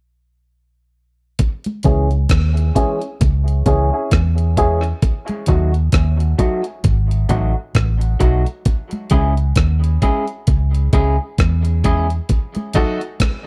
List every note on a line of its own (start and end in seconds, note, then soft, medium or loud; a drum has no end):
1.39 kick medium
1.39 closed hi-hat medium
1.39 low conga medium
1.64 closed hi-hat medium
1.64 high conga medium
1.83 2.25 C#2 loud
1.83 2.07 E3 medium
1.83 2.07 G#3 medium
1.83 2.08 C#4 medium
1.83 2.07 C#4 medium
1.83 2.08 E4 medium
1.83 2.08 G#4 loud
1.83 2.07 G#4 medium
1.83 kick medium
1.83 closed hi-hat medium
1.83 low conga medium
2.11 closed hi-hat soft
2.29 2.70 D#2 medium
2.29 kick loud
2.29 cross-stick loud
2.29 closed hi-hat medium
2.57 closed hi-hat medium
2.75 2.98 E3 medium
2.75 2.98 G#3 medium
2.75 2.99 C#4 medium
2.75 2.98 C#4 medium
2.75 2.99 E4 medium
2.75 2.99 G#4 medium
2.75 2.98 G#4 medium
2.75 kick medium
2.75 closed hi-hat medium
3.01 closed hi-hat soft
3.21 3.61 C#2 medium
3.21 kick loud
3.21 closed hi-hat medium
3.21 low conga medium
3.48 closed hi-hat soft
3.66 3.90 C#2 medium
3.66 3.88 E3 medium
3.66 3.88 G#3 medium
3.66 3.89 C#4 medium
3.66 3.90 E4 medium
3.66 3.90 G#4 medium
3.66 3.89 G#4 medium
3.66 kick medium
3.66 closed hi-hat medium
3.66 low conga medium
3.93 4.09 C#4 medium
3.93 4.10 E4 medium
3.93 4.10 G#4 medium
4.11 4.92 E2 medium
4.11 kick loud
4.11 cross-stick loud
4.11 closed hi-hat medium
4.11 high conga soft
4.38 closed hi-hat medium
4.57 4.79 E3 medium
4.57 4.80 G#3 medium
4.57 4.80 C#4 medium
4.57 4.81 E4 medium
4.57 4.81 G#4 loud
4.57 4.80 G#4 medium
4.57 kick medium
4.57 closed hi-hat medium
4.83 closed hi-hat soft
5.02 kick loud
5.02 closed hi-hat medium
5.02 low conga medium
5.28 closed hi-hat soft
5.28 high conga medium
5.46 5.88 D#2 medium
5.46 5.70 F#3 medium
5.46 5.70 A3 medium
5.46 5.70 D#4 medium
5.46 5.70 F#4 medium
5.46 kick medium
5.46 closed hi-hat medium
5.46 low conga medium
5.74 closed hi-hat soft
5.92 6.33 D#2 medium
5.92 kick loud
5.92 cross-stick loud
5.92 closed hi-hat medium
6.20 closed hi-hat soft
6.39 6.61 F#3 medium
6.39 6.61 A3 medium
6.39 6.61 D#4 medium
6.39 6.61 F#4 medium
6.39 kick medium
6.39 closed hi-hat medium
6.64 closed hi-hat soft
6.84 7.24 G#1 medium
6.84 kick loud
6.84 closed hi-hat medium
6.84 low conga medium
7.11 closed hi-hat soft
7.29 7.53 A1 medium
7.29 7.51 F#3 medium
7.29 7.52 A3 medium
7.29 7.52 D#4 medium
7.29 7.52 F#4 medium
7.29 kick medium
7.29 closed hi-hat medium
7.29 low conga medium
7.75 8.15 A1 medium
7.75 kick loud
7.75 cross-stick loud
7.75 closed hi-hat medium
7.75 high conga soft
8.01 closed hi-hat medium
8.20 8.44 B1 medium
8.20 8.42 F#3 medium
8.20 8.42 A3 medium
8.20 8.43 D#4 medium
8.20 8.43 F#4 medium
8.20 kick medium
8.20 closed hi-hat medium
8.46 closed hi-hat soft
8.65 kick loud
8.65 closed hi-hat medium
8.65 low conga medium
8.91 closed hi-hat soft
8.91 high conga medium
9.10 9.52 C#2 medium
9.10 9.33 G#3 medium
9.10 9.33 C#4 medium
9.10 9.33 E4 loud
9.10 9.34 G#4 medium
9.10 kick medium
9.10 closed hi-hat medium
9.10 low conga medium
9.37 closed hi-hat soft
9.56 9.97 D#2 medium
9.56 kick loud
9.56 cross-stick loud
9.56 closed hi-hat medium
9.84 closed hi-hat soft
10.02 10.24 G#3 medium
10.02 10.24 C#4 medium
10.02 10.24 E4 medium
10.02 10.25 G#4 medium
10.02 kick medium
10.02 closed hi-hat medium
10.28 closed hi-hat soft
10.47 10.88 C#2 loud
10.47 kick loud
10.47 closed hi-hat medium
10.47 low conga medium
10.75 closed hi-hat soft
10.93 11.17 C#2 medium
10.93 11.15 G#3 medium
10.93 11.15 C#4 medium
10.93 11.15 E4 medium
10.93 11.16 G#4 medium
10.93 kick medium
10.93 closed hi-hat medium
10.93 low conga medium
11.38 12.19 E2 medium
11.38 kick loud
11.38 cross-stick loud
11.38 closed hi-hat medium
11.38 high conga soft
11.65 closed hi-hat medium
11.84 12.06 G#3 medium
11.84 12.06 C#4 medium
11.84 12.07 E4 medium
11.84 12.07 G#4 medium
11.84 kick medium
11.84 closed hi-hat medium
12.10 closed hi-hat soft
12.29 kick loud
12.29 closed hi-hat medium
12.29 low conga medium
12.55 closed hi-hat medium
12.55 high conga medium
12.73 12.97 F#3 medium
12.73 12.97 A3 medium
12.73 12.98 D#4 medium
12.73 12.99 F#4 medium
12.73 12.98 F#4 loud
12.73 12.99 A4 loud
12.73 kick medium
12.73 closed hi-hat medium
12.73 low conga medium
13.01 closed hi-hat soft
13.20 kick loud
13.20 cross-stick loud
13.20 closed hi-hat medium
13.20 high conga soft